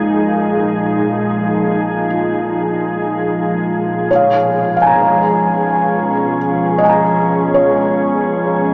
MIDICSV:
0, 0, Header, 1, 5, 480
1, 0, Start_track
1, 0, Tempo, 500000
1, 8389, End_track
2, 0, Start_track
2, 0, Title_t, "Synth texture"
2, 0, Program_c, 0, 99
2, 0, Note_on_c, 0, 82, 65
2, 3927, Note_on_c, 0, 85, 68
2, 3944, Note_off_c, 0, 82, 0
2, 8389, Note_off_c, 0, 85, 0
2, 8389, End_track
3, 0, Start_track
3, 0, Title_t, "Felt piano"
3, 0, Program_c, 1, 0
3, 0, Control_c, 1, 64, 127
3, 2017, Note_on_c, 1, 65, 49
3, 3929, Control_c, 1, 64, 0
3, 3942, Note_on_c, 1, 73, 52
3, 3986, Note_on_c, 1, 77, 47
3, 4112, Control_c, 1, 64, 127
3, 4173, Note_off_c, 1, 65, 0
3, 4560, Note_off_c, 1, 77, 0
3, 4574, Note_on_c, 1, 77, 47
3, 4624, Note_on_c, 1, 80, 49
3, 4674, Note_on_c, 1, 82, 47
3, 6102, Note_off_c, 1, 73, 0
3, 6512, Note_on_c, 1, 75, 59
3, 6548, Note_off_c, 1, 80, 0
3, 6562, Note_on_c, 1, 80, 40
3, 6601, Note_off_c, 1, 82, 0
3, 6616, Note_on_c, 1, 82, 47
3, 6736, Note_off_c, 1, 77, 0
3, 7240, Note_on_c, 1, 73, 54
3, 8389, Note_off_c, 1, 73, 0
3, 8389, Note_off_c, 1, 75, 0
3, 8389, Note_off_c, 1, 80, 0
3, 8389, Note_off_c, 1, 82, 0
3, 8389, End_track
4, 0, Start_track
4, 0, Title_t, "Ambient pad"
4, 0, Program_c, 2, 92
4, 0, Note_on_c, 2, 46, 83
4, 0, Note_on_c, 2, 53, 88
4, 0, Note_on_c, 2, 56, 80
4, 0, Note_on_c, 2, 63, 80
4, 0, Note_on_c, 2, 68, 79
4, 3905, Note_off_c, 2, 46, 0
4, 3919, Note_on_c, 2, 47, 84
4, 4878, Note_on_c, 2, 61, 85
4, 4991, Note_off_c, 2, 63, 0
4, 8389, Note_off_c, 2, 47, 0
4, 8389, Note_off_c, 2, 53, 0
4, 8389, Note_off_c, 2, 56, 0
4, 8389, Note_off_c, 2, 61, 0
4, 8389, Note_off_c, 2, 68, 0
4, 8389, End_track
5, 0, Start_track
5, 0, Title_t, "Analog synth bass"
5, 0, Program_c, 3, 38
5, 0, Note_on_c, 3, 34, 83
5, 3862, Note_off_c, 3, 34, 0
5, 8389, End_track
0, 0, End_of_file